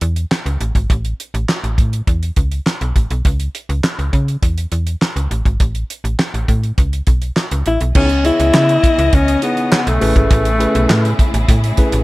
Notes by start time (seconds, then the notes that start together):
0.01 E2, closed hi-hat
0.16 closed hi-hat
0.31 snare, clap
0.46 C#2, closed hi-hat
0.61 A1, closed hi-hat
0.75 G#1, kick, closed hi-hat
0.90 A1, kick, closed hi-hat
1.05 closed hi-hat
1.20 closed hi-hat
1.34 A1, closed hi-hat
1.49 snare, clap
1.64 A1, closed hi-hat
1.78 A2, kick, closed hi-hat
1.93 closed hi-hat
2.07 E2, kick, closed hi-hat
2.23 closed hi-hat
2.36 C#2, kick, closed hi-hat
2.51 closed hi-hat
2.66 snare, clap
2.81 B1, closed hi-hat
2.96 A1, kick, closed hi-hat
3.10 B1, closed hi-hat
3.25 C#2, kick, closed hi-hat
3.40 closed hi-hat
3.55 closed hi-hat
3.69 C#2, closed hi-hat
3.84 snare, clap
3.99 C#2, closed hi-hat
4.13 C#3, kick, closed hi-hat
4.28 closed hi-hat
4.43 E2, kick, closed hi-hat
4.58 closed hi-hat
4.72 E2, closed hi-hat
4.87 closed hi-hat
5.02 snare, clap
5.16 C#2, closed hi-hat
5.31 A1, closed hi-hat
5.45 G#1, kick, closed hi-hat
5.60 A1, kick, closed hi-hat
5.75 closed hi-hat
5.90 closed hi-hat
6.04 A1, closed hi-hat
6.19 snare, clap
6.34 A1, closed hi-hat
6.48 A2, kick, closed hi-hat
6.63 closed hi-hat
6.78 C#2, kick, closed hi-hat
6.93 closed hi-hat
7.07 B1, kick, closed hi-hat
7.22 closed hi-hat
7.36 snare, clap
7.51 C#2, closed hi-hat
7.66 A1 E4, closed hi-hat
7.81 B1, closed hi-hat
7.95 C#2 C#3 E3 B3 C#4 D#4 E4 G#4 C#5 D#5, kick, crash
8.09 closed hi-hat
8.24 B3 E4 G#4 C#5 D#5, closed hi-hat
8.40 C#2, closed hi-hat
8.54 C#3, snare, clap
8.69 closed hi-hat
8.84 kick, closed hi-hat
8.98 C#2, closed hi-hat
9.13 C#2 C#4, kick, closed hi-hat
9.28 closed hi-hat
9.42 B3 D#4 E4 G#4 C#5, closed hi-hat
9.57 closed hi-hat
9.72 B3, snare, clap
9.87 B1 A3, closed hi-hat
10.01 A1 A3 B3 C#4 E4 G#4 B4, open hi-hat
10.16 G#1 A3, kick, closed hi-hat
10.31 A1, kick, closed hi-hat
10.45 closed hi-hat
10.59 A3 C#4 E4 G#4 B4, closed hi-hat
10.75 B1, closed hi-hat
10.90 A2, snare, clap
11.05 closed hi-hat
11.19 kick, closed hi-hat
11.34 A1, closed hi-hat
11.48 A2, kick, closed hi-hat
11.64 closed hi-hat
11.77 A3 C#4 E4 G#4 B4, kick, closed hi-hat
11.92 A1, closed hi-hat